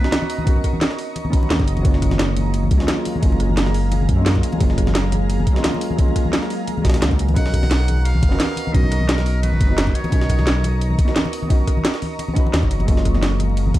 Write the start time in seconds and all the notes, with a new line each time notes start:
Already playing: B4 D#5 A#5 C#6
0.01 B3 C#4 D#4, snare
0.06 F#4 A#5
0.12 snare, closed hi-hat, ride, high conga
0.22 muted conga
0.30 closed hi-hat, open hi-hat
0.39 high conga
0.44 B3 C#4 D#4, kick, closed hi-hat, ride
0.48 F#4 A#4
0.56 muted conga
0.64 kick, cross-stick, closed hi-hat, ride
0.73 high conga
0.81 snare, closed hi-hat, ride, muted conga
0.91 cross-stick, snare
0.98 open hi-hat, ride
1.16 closed hi-hat, ride, muted conga
1.25 high conga
1.30 B3 C#4 D#4, kick, closed hi-hat, ride
1.34 F#4 B4
1.43 muted conga
1.50 D#2, snare, closed hi-hat, ride, high conga
1.59 F#1, kick, snare, ride
1.67 closed hi-hat, ride
1.77 ride, muted conga, high conga
1.82 F#1 F#3 G#3 A#3 G#4 F5 A#5, kick, closed hi-hat, ride, muted conga
1.86 C#4 F4
1.94 snare
2.02 kick, cross-stick, closed hi-hat, ride
2.11 snare, muted conga, high conga
2.19 snare, closed hi-hat, ride
2.29 cross-stick
2.36 closed hi-hat, ride, high conga
2.46 muted conga
2.54 closed hi-hat, ride
2.63 high conga
2.71 C#2, kick, closed hi-hat, ride, muted conga
2.77 F#3 G#3 A#3, snare
2.81 C#4 F4
2.88 snare, closed hi-hat, ride, high conga
3.05 closed hi-hat, open hi-hat, muted conga
3.16 high conga
3.20 F#1 F#3 G#3 A#3, kick, closed hi-hat, ride
3.24 C#4 F4
3.32 muted conga
3.40 cross-stick, closed hi-hat, ride
3.50 high conga
3.57 snare, closed hi-hat, ride
3.66 cross-stick, snare, muted conga
3.74 open hi-hat, ride
3.92 closed hi-hat, ride, muted conga
4.02 high conga
4.09 F#2, kick, closed hi-hat, ride
4.15 F#3 G#3 A#3
4.20 C#4 F4
4.26 snare, closed hi-hat, ride, muted conga, high conga
4.35 kick, snare, ride
4.43 closed hi-hat, ride
4.52 ride, muted conga, high conga
4.58 F#1 F#3 G#3 A#3, kick, closed hi-hat, ride
4.62 C#4 F4
4.70 snare
4.78 kick, cross-stick, closed hi-hat, ride
4.87 snare, muted conga, high conga
4.95 snare, closed hi-hat, ride
5.04 cross-stick
5.12 closed hi-hat, ride, muted conga, high conga
5.30 closed hi-hat, ride
5.39 high conga
5.47 kick, closed hi-hat, ride, muted conga
5.53 F#3 G#3 A#3, snare
5.57 C#4 F4
5.64 snare, closed hi-hat, ride, high conga
5.74 muted conga
5.81 closed hi-hat, open hi-hat
5.91 high conga
5.96 F#3 G#3 A#3, kick, closed hi-hat, ride
6.00 C#4 F4
6.08 muted conga
6.16 kick, cross-stick, closed hi-hat, ride
6.25 high conga
6.33 snare, closed hi-hat, ride, muted conga
6.42 cross-stick, snare
6.50 open hi-hat, ride
6.67 closed hi-hat, ride, muted conga
6.78 high conga
6.82 A#1 F#3 G#3 A#3, kick, snare, closed hi-hat, ride
6.86 C#4 F#4, snare, ride
6.94 snare, ride, muted conga
7.02 C#2, snare, closed hi-hat, ride, high conga
7.11 kick, snare, ride
7.19 closed hi-hat, ride
7.28 ride, muted conga, high conga
7.34 B1 B3 C#4 D#4 D#5 F#5 A#5 C#6, kick, closed hi-hat, ride, muted conga
7.38 F#4 A#4
7.46 snare
7.54 kick, cross-stick, closed hi-hat, ride
7.63 snare, muted conga, high conga
7.71 snare, closed hi-hat, ride
7.80 cross-stick
7.88 closed hi-hat, ride, high conga
7.97 muted conga
8.05 F5, closed hi-hat, ride
8.15 high conga
8.23 F#1, kick, closed hi-hat, ride, muted conga
8.29 B3 C#4, snare
8.33 F#4 A#4
8.40 snare, closed hi-hat, ride, high conga
8.57 closed hi-hat, open hi-hat, muted conga
8.67 high conga
8.72 B1 B3 C#4 D#4 D#5, kick, closed hi-hat, ride
8.76 F#4 A#4
8.84 muted conga
8.92 cross-stick, closed hi-hat, ride
9.01 high conga
9.08 A#4, snare, closed hi-hat, ride
9.18 cross-stick, snare, muted conga
9.26 open hi-hat, ride
9.43 B4, closed hi-hat, ride, muted conga
9.53 high conga
9.61 F#1, kick, closed hi-hat, ride
9.67 B3 D#4
9.71 F#4 A#4
9.78 snare, closed hi-hat, ride, muted conga, high conga
9.87 kick, snare, ride
9.95 C#5, closed hi-hat, ride
10.04 ride, muted conga, high conga
10.10 B1 B3 C#4 D#4, kick, closed hi-hat, ride
10.14 F#4 A#4
10.21 snare
10.29 kick, cross-stick, closed hi-hat, ride
10.39 snare, muted conga, high conga
10.47 snare, closed hi-hat, ride
10.56 cross-stick
10.64 closed hi-hat, ride, muted conga
10.81 closed hi-hat, ride
10.90 high conga
10.99 kick, closed hi-hat, ride, muted conga
11.05 B3 D#4, snare
11.09 F#4 A#4
11.16 snare, closed hi-hat, ride, high conga
11.25 muted conga
11.33 closed hi-hat, open hi-hat
11.43 high conga
11.47 B3 C#4 D#4, kick, closed hi-hat, ride
11.52 F#4 A#4
11.60 muted conga
11.67 kick, cross-stick, closed hi-hat, ride
11.77 high conga
11.85 snare, closed hi-hat, ride, muted conga
11.94 cross-stick, snare
12.02 open hi-hat, ride, high conga
12.19 closed hi-hat, ride, muted conga
12.28 high conga
12.34 B3 C#4 D#4, kick, closed hi-hat, ride
12.38 F#4 B4
12.46 muted conga
12.54 D#2, snare, closed hi-hat, ride, high conga
12.63 F#1, kick, snare, ride
12.71 closed hi-hat, ride
12.80 ride, muted conga, high conga
12.85 F#1 F#3 G#3 A#3 G#4 F5 A#5, kick, closed hi-hat, ride, muted conga
12.90 C#4 F4
12.97 snare
13.05 kick, cross-stick, closed hi-hat, ride
13.15 snare, muted conga, high conga
13.23 snare, closed hi-hat, ride
13.32 cross-stick
13.40 closed hi-hat, ride, high conga
13.50 muted conga
13.57 closed hi-hat, ride
13.67 high conga
13.74 C#2, kick, closed hi-hat, ride, muted conga